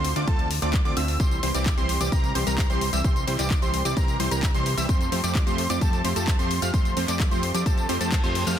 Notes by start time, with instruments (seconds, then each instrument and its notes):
Already playing: analog synth bass D2, supersaw synth D3 A3 C4 F4 C5, analog synth lead C6
0.04 open hi-hat
0.16 analog synth bass D2, supersaw synth D3 A3 C4 F4 D5, analog synth lead D6, closed hi-hat
0.27 analog synth bass D2, supersaw synth D3 A3 C4 F4 A4, analog synth lead A5, kick, closed hi-hat
0.39 closed hi-hat
0.51 open hi-hat
0.62 analog synth bass D2, supersaw synth D3 A3 C4 F4 D5, analog synth lead D6, closed hi-hat
0.74 kick, clap, closed hi-hat
0.85 analog synth bass D2, supersaw synth D3 A3 C4 F4 D5, analog synth lead D6, closed hi-hat
0.97 analog synth bass D2, supersaw synth D3 A3 C4 F4 E5, analog synth lead E6, open hi-hat
1.08 open hi-hat
1.20 analog synth bass C2, supersaw synth E3 G3 C4 G4 C5, analog synth lead C6, kick, closed hi-hat, tambourine
1.31 closed hi-hat, tambourine
1.43 analog synth bass C2, supersaw synth E3 G3 C4 G4 C5, analog synth lead C6, open hi-hat
1.54 analog synth bass C2, supersaw synth E3 G3 C4 G4 D5, analog synth lead D6, closed hi-hat, tambourine
1.66 kick, clap, closed hi-hat, tambourine
1.77 analog synth bass C2, supersaw synth E3 G3 C4 G4 C5, analog synth lead C6, closed hi-hat, tambourine
1.89 open hi-hat
2.01 analog synth bass C2, supersaw synth E3 G3 C4 G4 D5, analog synth lead D6, closed hi-hat, tambourine
2.12 analog synth bass C2, supersaw synth E3 G3 C4 G4 A#4, analog synth lead A#5, kick, closed hi-hat, tambourine
2.24 closed hi-hat, tambourine
2.35 analog synth bass C2, supersaw synth E3 G3 C4 G4 C5, analog synth lead C6, open hi-hat
2.47 analog synth bass C2, supersaw synth E3 G3 C4 G4 A#4, analog synth lead A#5, closed hi-hat, tambourine
2.58 kick, clap, closed hi-hat, tambourine
2.70 analog synth bass C2, supersaw synth E3 G3 C4 G4 C5, analog synth lead C6, closed hi-hat, tambourine
2.81 open hi-hat
2.93 analog synth bass C2, supersaw synth E3 G3 C4 G4 E5, analog synth lead E6, closed hi-hat, tambourine
3.04 analog synth bass C2, supersaw synth E3 G3 C4 G4 C5, analog synth lead C6, kick, closed hi-hat, tambourine
3.16 closed hi-hat, tambourine
3.27 analog synth bass C2, supersaw synth E3 G3 C4 G4 C5, analog synth lead C6, open hi-hat
3.39 analog synth bass C2, supersaw synth E3 G3 C4 G4 D5, analog synth lead D6, clap, closed hi-hat, tambourine
3.51 kick, clap, closed hi-hat, tambourine
3.62 analog synth bass C2, supersaw synth E3 G3 C4 G4 C5, analog synth lead C6, closed hi-hat, tambourine
3.74 open hi-hat
3.85 analog synth bass C2, supersaw synth E3 G3 C4 G4 D5, analog synth lead D6, closed hi-hat, tambourine
3.97 analog synth bass C2, supersaw synth E3 G3 C4 G4 A#4, analog synth lead A#5, kick, closed hi-hat, tambourine
4.08 closed hi-hat, tambourine
4.20 analog synth bass C2, supersaw synth E3 G3 C4 G4 C5, analog synth lead C6, open hi-hat
4.31 analog synth bass C2, supersaw synth E3 G3 C4 G4 A#4, analog synth lead A#5, closed hi-hat, tambourine
4.43 kick, clap, closed hi-hat, tambourine
4.54 analog synth bass C2, supersaw synth E3 G3 C4 G4 C5, analog synth lead C6, closed hi-hat, tambourine
4.66 open hi-hat
4.77 analog synth bass C2, supersaw synth E3 G3 C4 G4 E5, analog synth lead E6, open hi-hat, tambourine
4.89 analog synth bass F2, supersaw synth F3 A3 C4 G4, analog synth lead C6, kick, closed hi-hat, tambourine
5.01 closed hi-hat, tambourine
5.12 analog synth bass F2, supersaw synth F3 A3 C4 G4 C5, analog synth lead C6, open hi-hat
5.24 analog synth bass F2, supersaw synth F3 A3 C4 G4 D5, analog synth lead D6, closed hi-hat, tambourine
5.35 kick, clap, closed hi-hat, tambourine
5.47 analog synth bass F2, supersaw synth F3 A3 C4 G4 C5, analog synth lead C6, closed hi-hat, tambourine
5.58 open hi-hat
5.70 analog synth bass F2, supersaw synth F3 A3 C4 G4 D5, analog synth lead D6, closed hi-hat, tambourine
5.81 analog synth bass F2, supersaw synth F3 A3 C4 G4 A4, analog synth lead A5, kick, closed hi-hat, tambourine
5.93 closed hi-hat, tambourine
6.04 analog synth bass F2, supersaw synth F3 A3 C4 G4 C5, analog synth lead C6, open hi-hat
6.16 analog synth bass F2, supersaw synth F3 A3 C4 G4 A4, analog synth lead A5, closed hi-hat, tambourine
6.28 kick, clap, closed hi-hat, tambourine
6.39 analog synth bass F2, supersaw synth F3 A3 C4 G4 C5, analog synth lead C6, closed hi-hat, tambourine
6.51 open hi-hat
6.62 analog synth bass F2, supersaw synth F3 A3 C4 G4 F5, analog synth lead F6, closed hi-hat, tambourine
6.74 analog synth bass F2, supersaw synth F3 A3 C4 G4, analog synth lead C6, kick, closed hi-hat, tambourine
6.85 closed hi-hat, tambourine
6.97 analog synth bass F2, supersaw synth F3 A3 C4 G4 C5, analog synth lead C6, open hi-hat
7.08 analog synth bass F2, supersaw synth F3 A3 C4 G4 D5, analog synth lead D6, clap, closed hi-hat, tambourine
7.20 kick, clap, closed hi-hat, tambourine
7.31 analog synth bass F2, supersaw synth F3 A3 C4 G4 C5, analog synth lead C6, closed hi-hat, tambourine
7.43 open hi-hat
7.54 analog synth bass F2, supersaw synth F3 A3 C4 G4 D5, analog synth lead D6, closed hi-hat, tambourine
7.66 analog synth bass F2, supersaw synth F3 A3 C4 G4 A4, analog synth lead A5, kick, closed hi-hat, tambourine, reverse cymbal
7.78 closed hi-hat, tambourine
7.89 analog synth bass F2, supersaw synth F3 A3 C4 G4 C5, analog synth lead C6, open hi-hat
8.01 analog synth bass F2, supersaw synth F3 A3 C4 G4 A4, analog synth lead A5, closed hi-hat, tambourine
8.12 kick, clap, closed hi-hat, tambourine
8.24 analog synth bass F2, supersaw synth F3 A3 C4 G4 C5, analog synth lead C6, closed hi-hat, tambourine
8.35 open hi-hat
8.47 analog synth bass F2, supersaw synth F3 A3 C4 G4 F5, analog synth lead F6, open hi-hat, tambourine